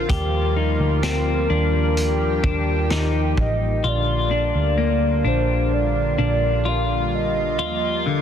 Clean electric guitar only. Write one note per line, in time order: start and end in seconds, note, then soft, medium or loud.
0.10 0.56 G4 medium
0.57 1.03 D#4 medium
1.03 1.49 C4 medium
1.50 2.42 D4 medium
2.44 2.90 D4 medium
2.90 3.84 D#4 medium
3.84 4.31 F4 medium
4.31 4.78 D4 medium
4.78 5.25 A#3 medium
5.25 6.17 D4 medium
6.18 6.65 D4 medium
6.65 7.58 F4 medium
7.59 8.06 F4 medium
8.06 8.22 D3 medium